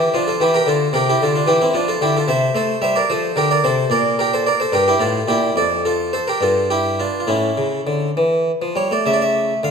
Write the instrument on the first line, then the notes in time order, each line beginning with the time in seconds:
harpsichord
Already playing: E4 G4
0.14 F3 D4 F4
0.27 F4 A4
0.40 E3 E4 G4
0.54 G4 A#4
0.66 D3 F4 A4
0.93 C3 G4 A#4
1.09 E4 G4
1.22 D3 F4 A4
1.36 D4 F4
1.47 E3 E4 G4
1.62 C4 E4
1.74 F3 D4 F4
1.88 F4 A4
2.01 D3 E4 G4
2.17 F4 A4
2.28 C3 C5 E5
2.55 A3 A4 C5
2.82 G3 C5 E5
2.96 A#4 D5
3.10 F3 A4 C5
3.36 D3 G4 A#4
3.51 A#4 D5
3.64 C3 A4 C5
3.90 A#2 A#4 D5
4.19 G4 A#4
4.34 A4 C5
4.47 A#4 D5
4.60 A4 C5
4.72 G2 G4 A#4
4.88 E4 G4
5.00 A2 F4 A4
5.28 A#2 E4 G4
5.56 F2 A4 D5
5.85 F4 A4
6.13 A4 C5
6.28 G4 A#4
6.41 G2 F4 A4
6.70 E4 G4
7.00 D4 F4
7.20 F4
7.27 A2 C#4 E4
7.57 C#3
7.87 D3
8.17 E3
8.62 F3
8.76 G3 C#5
8.91 A3 D5
9.06 C#3 A3 E5
9.13 D5
9.22 E5
9.63 D3 F5